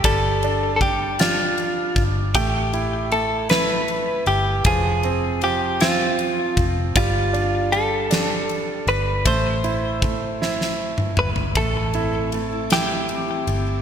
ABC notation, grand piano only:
X:1
M:6/8
L:1/8
Q:3/8=52
K:Am
V:1 name="Grand piano"
G, D G, D3 | A, E A, E3 | F, C F, C3 | G, D G, D3 |
A, E A, E3 | A, E A, E3 |]